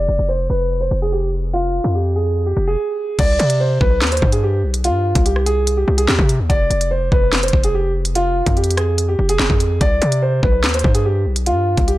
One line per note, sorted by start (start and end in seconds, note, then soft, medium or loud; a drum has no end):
0.00 0.26 D5 medium
0.08 0.18 F1 loud
0.19 0.49 F1 loud
0.29 0.45 C5 medium
0.50 0.90 F1 loud
0.50 0.79 B4 medium
0.81 0.97 C5 medium
0.91 1.81 F1 loud
1.02 1.10 G#4 medium
1.12 1.28 G4 medium
1.53 1.92 F4 loud
1.84 2.54 F2 loud
1.95 2.11 G4 medium
2.16 2.45 G#4 medium
2.46 2.63 G4 medium
2.57 2.77 F1 loud
2.67 3.16 G#4 medium
3.19 3.39 C2 loud
3.19 3.58 D5 loud
3.19 kick loud
3.19 closed hi-hat medium
3.19 crash medium
3.39 3.79 C3 loud
3.39 closed hi-hat medium
3.50 closed hi-hat medium
3.60 3.77 C5 medium
3.80 4.03 B1 loud
3.80 4.10 B4 medium
3.80 kick medium
4.01 4.21 D#2 loud
4.01 snare loud
4.01 clap loud
4.01 closed hi-hat medium
4.07 closed hi-hat medium
4.12 4.28 C5 medium
4.12 closed hi-hat medium
4.17 closed hi-hat medium
4.22 4.65 G2 loud
4.22 kick loud
4.32 4.41 G#4 medium
4.32 closed hi-hat medium
4.43 4.59 G4 medium
4.63 4.91 B1 loud
4.74 closed hi-hat medium
4.84 5.23 F4 loud
4.84 closed hi-hat medium
4.89 5.14 G2 loud
5.15 5.85 C2 loud
5.15 kick medium
5.15 closed hi-hat medium
5.26 5.42 G4 medium
5.26 closed hi-hat medium
5.36 cross-stick medium
5.46 5.75 G#4 medium
5.46 closed hi-hat medium
5.67 closed hi-hat medium
5.77 5.94 G4 medium
5.88 6.08 C2 loud
5.98 6.06 G#4 medium
5.98 closed hi-hat medium
6.08 6.18 D#2 loud
6.08 6.25 G4 medium
6.08 snare loud
6.08 clap medium
6.19 6.41 C3 loud
6.19 kick loud
6.29 closed hi-hat medium
6.39 6.49 D#2 loud
6.49 6.70 F1 loud
6.49 6.89 D5 loud
6.49 kick loud
6.49 closed hi-hat medium
6.70 7.10 F1 loud
6.70 closed hi-hat medium
6.81 closed hi-hat medium
6.91 7.07 C5 medium
7.12 7.52 F1 loud
7.12 7.41 B4 medium
7.12 kick medium
7.33 snare loud
7.33 clap loud
7.33 closed hi-hat medium
7.38 closed hi-hat medium
7.43 7.59 C5 medium
7.43 closed hi-hat medium
7.48 closed hi-hat medium
7.53 8.43 F1 loud
7.53 kick loud
7.64 7.72 G#4 medium
7.64 closed hi-hat medium
7.74 7.91 G4 medium
8.05 closed hi-hat medium
8.15 8.54 F4 loud
8.15 closed hi-hat medium
8.46 9.16 F2 loud
8.46 kick loud
8.46 closed hi-hat medium
8.57 8.73 G4 medium
8.57 closed hi-hat medium
8.64 closed hi-hat medium
8.71 closed hi-hat medium
8.77 9.07 G#4 medium
8.77 cross-stick loud
8.77 closed hi-hat medium
8.98 closed hi-hat medium
9.08 9.25 G4 medium
9.19 9.39 F1 loud
9.29 9.78 G#4 medium
9.29 closed hi-hat medium
9.39 9.49 F1 loud
9.39 snare loud
9.39 clap medium
9.50 9.80 F2 loud
9.50 kick loud
9.60 closed hi-hat medium
9.81 10.01 C2 loud
9.81 10.20 D5 loud
9.81 kick loud
9.81 closed hi-hat medium
10.02 10.41 C3 loud
10.02 closed hi-hat medium
10.12 closed hi-hat medium
10.22 10.39 C5 medium
10.42 10.65 B1 loud
10.42 10.72 B4 medium
10.42 kick medium
10.64 10.83 D#2 loud
10.64 snare loud
10.64 clap loud
10.64 closed hi-hat medium
10.69 closed hi-hat medium
10.74 10.90 C5 medium
10.74 closed hi-hat medium
10.79 closed hi-hat medium
10.84 11.27 G2 loud
10.84 kick loud
10.94 11.03 G#4 medium
10.94 closed hi-hat medium
11.05 11.21 G4 medium
11.26 11.53 B1 loud
11.36 closed hi-hat medium
11.46 11.85 F4 loud
11.46 closed hi-hat medium
11.52 11.76 G2 loud
11.77 11.98 C2 loud
11.77 kick loud
11.77 closed hi-hat medium
11.88 11.98 G4 medium
11.88 closed hi-hat medium